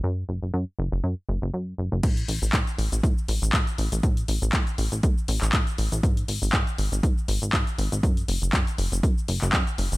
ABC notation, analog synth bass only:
X:1
M:4/4
L:1/16
Q:"Swing 16ths" 1/4=120
K:F#m
V:1 name="Analog synth bass" clef=bass
F,,2 F,,, F,,, F,, z F,,, F,,, F,, z F,,, F,,, F,,2 F,,, F,,, | A,,2 A,,, A,,, A,, z A,,, A,,, A,, z A,,, A,,, A,, z A,,, A,,, | A,,2 A,,, A,,, A,, z A,,, A,,, A,, z A,,, A,,, A,, z A,,, A,,, | G,,2 G,,, G,,, G,, z G,,, G,,, G,, z G,,, G,,, G,, z G,,, G,,, |
F,,2 F,,, F,,, F,, z F,,, F,,, F,, z F,,, F,,, F,, z F,,, F,,, |]